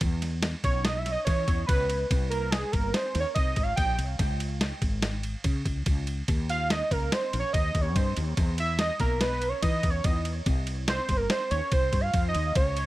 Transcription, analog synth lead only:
0, 0, Header, 1, 2, 480
1, 0, Start_track
1, 0, Tempo, 418118
1, 15, Time_signature, 5, 2, 24, 8
1, 14763, End_track
2, 0, Start_track
2, 0, Title_t, "Analog synth lead"
2, 0, Program_c, 0, 81
2, 734, Note_on_c, 0, 73, 88
2, 965, Note_on_c, 0, 75, 86
2, 983, Note_off_c, 0, 73, 0
2, 1123, Note_on_c, 0, 76, 82
2, 1141, Note_off_c, 0, 75, 0
2, 1274, Note_off_c, 0, 76, 0
2, 1281, Note_on_c, 0, 75, 90
2, 1428, Note_off_c, 0, 75, 0
2, 1435, Note_on_c, 0, 73, 98
2, 1891, Note_off_c, 0, 73, 0
2, 1913, Note_on_c, 0, 71, 99
2, 2370, Note_off_c, 0, 71, 0
2, 2641, Note_on_c, 0, 70, 88
2, 2881, Note_on_c, 0, 68, 91
2, 2899, Note_off_c, 0, 70, 0
2, 3121, Note_on_c, 0, 70, 96
2, 3138, Note_off_c, 0, 68, 0
2, 3366, Note_on_c, 0, 72, 95
2, 3383, Note_off_c, 0, 70, 0
2, 3670, Note_off_c, 0, 72, 0
2, 3677, Note_on_c, 0, 73, 93
2, 3753, Note_off_c, 0, 73, 0
2, 3841, Note_on_c, 0, 75, 104
2, 4166, Note_on_c, 0, 77, 95
2, 4183, Note_off_c, 0, 75, 0
2, 4313, Note_off_c, 0, 77, 0
2, 4320, Note_on_c, 0, 79, 103
2, 4551, Note_off_c, 0, 79, 0
2, 7459, Note_on_c, 0, 77, 107
2, 7700, Note_on_c, 0, 75, 104
2, 7717, Note_off_c, 0, 77, 0
2, 7932, Note_on_c, 0, 70, 91
2, 7949, Note_off_c, 0, 75, 0
2, 8178, Note_on_c, 0, 72, 93
2, 8195, Note_off_c, 0, 70, 0
2, 8484, Note_off_c, 0, 72, 0
2, 8491, Note_on_c, 0, 73, 90
2, 8639, Note_off_c, 0, 73, 0
2, 8646, Note_on_c, 0, 75, 100
2, 8966, Note_on_c, 0, 73, 86
2, 8983, Note_off_c, 0, 75, 0
2, 9129, Note_on_c, 0, 72, 84
2, 9146, Note_off_c, 0, 73, 0
2, 9372, Note_off_c, 0, 72, 0
2, 9867, Note_on_c, 0, 76, 109
2, 10085, Note_off_c, 0, 76, 0
2, 10096, Note_on_c, 0, 75, 102
2, 10319, Note_off_c, 0, 75, 0
2, 10336, Note_on_c, 0, 70, 91
2, 10559, Note_off_c, 0, 70, 0
2, 10576, Note_on_c, 0, 71, 100
2, 10891, Note_on_c, 0, 73, 92
2, 10908, Note_off_c, 0, 71, 0
2, 11041, Note_off_c, 0, 73, 0
2, 11047, Note_on_c, 0, 75, 98
2, 11362, Note_on_c, 0, 73, 89
2, 11379, Note_off_c, 0, 75, 0
2, 11529, Note_on_c, 0, 75, 92
2, 11546, Note_off_c, 0, 73, 0
2, 11772, Note_off_c, 0, 75, 0
2, 12500, Note_on_c, 0, 72, 90
2, 12819, Note_on_c, 0, 70, 84
2, 12836, Note_off_c, 0, 72, 0
2, 12973, Note_off_c, 0, 70, 0
2, 12980, Note_on_c, 0, 72, 86
2, 13201, Note_off_c, 0, 72, 0
2, 13212, Note_on_c, 0, 73, 87
2, 13437, Note_off_c, 0, 73, 0
2, 13467, Note_on_c, 0, 72, 93
2, 13786, Note_on_c, 0, 77, 93
2, 13803, Note_off_c, 0, 72, 0
2, 14096, Note_off_c, 0, 77, 0
2, 14103, Note_on_c, 0, 75, 87
2, 14398, Note_off_c, 0, 75, 0
2, 14423, Note_on_c, 0, 73, 105
2, 14763, Note_off_c, 0, 73, 0
2, 14763, End_track
0, 0, End_of_file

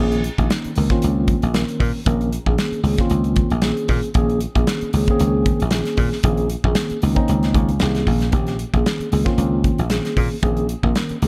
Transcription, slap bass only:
0, 0, Header, 1, 3, 480
1, 0, Start_track
1, 0, Key_signature, -5, "minor"
1, 0, Tempo, 522648
1, 1904, Time_signature, 4, 2, 24, 8
1, 10357, End_track
2, 0, Start_track
2, 0, Title_t, "Slap bass"
2, 0, Program_c, 0, 36
2, 0, Note_on_c, 0, 34, 86
2, 263, Note_off_c, 0, 34, 0
2, 353, Note_on_c, 0, 34, 87
2, 438, Note_off_c, 0, 34, 0
2, 709, Note_on_c, 0, 37, 74
2, 807, Note_off_c, 0, 37, 0
2, 955, Note_on_c, 0, 37, 84
2, 1230, Note_off_c, 0, 37, 0
2, 1313, Note_on_c, 0, 34, 74
2, 1494, Note_off_c, 0, 34, 0
2, 1651, Note_on_c, 0, 46, 89
2, 1754, Note_off_c, 0, 46, 0
2, 1898, Note_on_c, 0, 34, 80
2, 2178, Note_off_c, 0, 34, 0
2, 2261, Note_on_c, 0, 34, 90
2, 2348, Note_off_c, 0, 34, 0
2, 2602, Note_on_c, 0, 37, 80
2, 2707, Note_off_c, 0, 37, 0
2, 2852, Note_on_c, 0, 37, 87
2, 3133, Note_off_c, 0, 37, 0
2, 3225, Note_on_c, 0, 34, 73
2, 3407, Note_off_c, 0, 34, 0
2, 3570, Note_on_c, 0, 46, 90
2, 3671, Note_off_c, 0, 46, 0
2, 3807, Note_on_c, 0, 34, 85
2, 4090, Note_off_c, 0, 34, 0
2, 4181, Note_on_c, 0, 34, 97
2, 4266, Note_off_c, 0, 34, 0
2, 4532, Note_on_c, 0, 37, 79
2, 4632, Note_off_c, 0, 37, 0
2, 4777, Note_on_c, 0, 37, 90
2, 5056, Note_off_c, 0, 37, 0
2, 5158, Note_on_c, 0, 34, 74
2, 5335, Note_off_c, 0, 34, 0
2, 5486, Note_on_c, 0, 46, 85
2, 5588, Note_off_c, 0, 46, 0
2, 5732, Note_on_c, 0, 34, 89
2, 6012, Note_off_c, 0, 34, 0
2, 6101, Note_on_c, 0, 34, 86
2, 6186, Note_off_c, 0, 34, 0
2, 6456, Note_on_c, 0, 37, 81
2, 6554, Note_off_c, 0, 37, 0
2, 6697, Note_on_c, 0, 37, 85
2, 6878, Note_off_c, 0, 37, 0
2, 6927, Note_on_c, 0, 37, 73
2, 7148, Note_off_c, 0, 37, 0
2, 7183, Note_on_c, 0, 36, 78
2, 7397, Note_off_c, 0, 36, 0
2, 7413, Note_on_c, 0, 34, 81
2, 7632, Note_off_c, 0, 34, 0
2, 7646, Note_on_c, 0, 34, 85
2, 7930, Note_off_c, 0, 34, 0
2, 8023, Note_on_c, 0, 34, 86
2, 8108, Note_off_c, 0, 34, 0
2, 8381, Note_on_c, 0, 37, 79
2, 8479, Note_off_c, 0, 37, 0
2, 8612, Note_on_c, 0, 37, 87
2, 8896, Note_off_c, 0, 37, 0
2, 8991, Note_on_c, 0, 34, 76
2, 9173, Note_off_c, 0, 34, 0
2, 9340, Note_on_c, 0, 46, 90
2, 9440, Note_off_c, 0, 46, 0
2, 9576, Note_on_c, 0, 34, 85
2, 9860, Note_off_c, 0, 34, 0
2, 9950, Note_on_c, 0, 34, 92
2, 10036, Note_off_c, 0, 34, 0
2, 10306, Note_on_c, 0, 37, 84
2, 10357, Note_off_c, 0, 37, 0
2, 10357, End_track
3, 0, Start_track
3, 0, Title_t, "Muted slap bass strokes"
3, 601, Note_on_c, 9, 29, 33
3, 692, Note_off_c, 9, 29, 0
3, 2497, Note_on_c, 9, 29, 35
3, 2589, Note_off_c, 9, 29, 0
3, 4430, Note_on_c, 9, 29, 37
3, 4522, Note_off_c, 9, 29, 0
3, 6346, Note_on_c, 9, 29, 35
3, 6438, Note_off_c, 9, 29, 0
3, 8262, Note_on_c, 9, 29, 35
3, 8354, Note_off_c, 9, 29, 0
3, 10198, Note_on_c, 9, 29, 35
3, 10290, Note_off_c, 9, 29, 0
3, 10357, End_track
0, 0, End_of_file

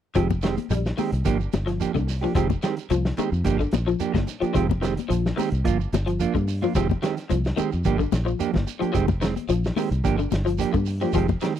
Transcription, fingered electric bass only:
0, 0, Header, 1, 3, 480
1, 0, Start_track
1, 0, Tempo, 549451
1, 137, Time_signature, 4, 2, 24, 8
1, 10133, End_track
2, 0, Start_track
2, 0, Title_t, "Fingered electric bass"
2, 0, Program_c, 0, 33
2, 138, Note_on_c, 0, 29, 83
2, 500, Note_off_c, 0, 29, 0
2, 614, Note_on_c, 0, 34, 79
2, 796, Note_off_c, 0, 34, 0
2, 981, Note_on_c, 0, 36, 69
2, 1068, Note_off_c, 0, 36, 0
2, 1099, Note_on_c, 0, 31, 77
2, 1280, Note_off_c, 0, 31, 0
2, 1343, Note_on_c, 0, 31, 84
2, 1617, Note_off_c, 0, 31, 0
2, 1704, Note_on_c, 0, 36, 72
2, 1971, Note_off_c, 0, 36, 0
2, 2053, Note_on_c, 0, 29, 79
2, 2236, Note_off_c, 0, 29, 0
2, 2540, Note_on_c, 0, 36, 77
2, 2720, Note_off_c, 0, 36, 0
2, 2900, Note_on_c, 0, 41, 77
2, 2987, Note_off_c, 0, 41, 0
2, 3013, Note_on_c, 0, 31, 92
2, 3196, Note_off_c, 0, 31, 0
2, 3262, Note_on_c, 0, 34, 89
2, 3442, Note_off_c, 0, 34, 0
2, 3618, Note_on_c, 0, 31, 69
2, 3706, Note_off_c, 0, 31, 0
2, 3978, Note_on_c, 0, 29, 94
2, 4340, Note_off_c, 0, 29, 0
2, 4457, Note_on_c, 0, 34, 78
2, 4638, Note_off_c, 0, 34, 0
2, 4824, Note_on_c, 0, 36, 72
2, 4910, Note_off_c, 0, 36, 0
2, 4937, Note_on_c, 0, 31, 87
2, 5118, Note_off_c, 0, 31, 0
2, 5178, Note_on_c, 0, 31, 82
2, 5454, Note_off_c, 0, 31, 0
2, 5545, Note_on_c, 0, 43, 73
2, 5811, Note_off_c, 0, 43, 0
2, 5899, Note_on_c, 0, 29, 81
2, 6079, Note_off_c, 0, 29, 0
2, 6389, Note_on_c, 0, 36, 80
2, 6565, Note_off_c, 0, 36, 0
2, 6757, Note_on_c, 0, 41, 74
2, 6837, Note_off_c, 0, 41, 0
2, 6861, Note_on_c, 0, 31, 90
2, 7040, Note_off_c, 0, 31, 0
2, 7101, Note_on_c, 0, 34, 89
2, 7280, Note_off_c, 0, 34, 0
2, 7464, Note_on_c, 0, 31, 75
2, 7549, Note_off_c, 0, 31, 0
2, 7818, Note_on_c, 0, 29, 89
2, 8178, Note_off_c, 0, 29, 0
2, 8292, Note_on_c, 0, 34, 81
2, 8474, Note_off_c, 0, 34, 0
2, 8658, Note_on_c, 0, 36, 75
2, 8745, Note_off_c, 0, 36, 0
2, 8780, Note_on_c, 0, 31, 86
2, 8959, Note_off_c, 0, 31, 0
2, 9017, Note_on_c, 0, 31, 83
2, 9292, Note_off_c, 0, 31, 0
2, 9384, Note_on_c, 0, 43, 73
2, 9649, Note_off_c, 0, 43, 0
2, 9738, Note_on_c, 0, 29, 88
2, 9918, Note_off_c, 0, 29, 0
2, 10133, End_track
3, 0, Start_track
3, 0, Title_t, "Muted fingered electric bass strokes"
3, 2778, Note_on_c, 9, 29, 31
3, 2865, Note_off_c, 9, 29, 0
3, 3862, Note_on_c, 9, 29, 33
3, 3949, Note_off_c, 9, 29, 0
3, 6634, Note_on_c, 9, 29, 31
3, 6721, Note_off_c, 9, 29, 0
3, 7703, Note_on_c, 9, 29, 31
3, 7791, Note_off_c, 9, 29, 0
3, 10133, End_track
0, 0, End_of_file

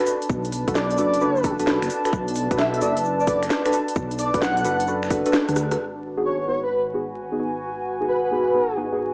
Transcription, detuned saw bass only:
0, 0, Header, 1, 2, 480
1, 0, Start_track
1, 0, Tempo, 458015
1, 310, Time_signature, 4, 2, 24, 8
1, 9577, End_track
2, 0, Start_track
2, 0, Title_t, "Detuned saw bass"
2, 0, Program_c, 0, 39
2, 309, Note_on_c, 0, 35, 102
2, 678, Note_off_c, 0, 35, 0
2, 709, Note_on_c, 0, 35, 102
2, 1029, Note_on_c, 0, 30, 95
2, 1045, Note_off_c, 0, 35, 0
2, 1638, Note_off_c, 0, 30, 0
2, 1670, Note_on_c, 0, 35, 91
2, 1871, Note_off_c, 0, 35, 0
2, 1909, Note_on_c, 0, 30, 93
2, 1980, Note_off_c, 0, 30, 0
2, 2230, Note_on_c, 0, 35, 98
2, 2599, Note_off_c, 0, 35, 0
2, 2630, Note_on_c, 0, 35, 104
2, 2949, Note_on_c, 0, 30, 94
2, 2965, Note_off_c, 0, 35, 0
2, 3654, Note_off_c, 0, 30, 0
2, 4149, Note_on_c, 0, 35, 100
2, 4518, Note_off_c, 0, 35, 0
2, 4549, Note_on_c, 0, 35, 102
2, 4869, Note_on_c, 0, 30, 97
2, 4885, Note_off_c, 0, 35, 0
2, 5478, Note_off_c, 0, 30, 0
2, 5749, Note_on_c, 0, 38, 90
2, 6054, Note_off_c, 0, 38, 0
2, 6069, Note_on_c, 0, 32, 84
2, 9577, Note_off_c, 0, 32, 0
2, 9577, End_track
0, 0, End_of_file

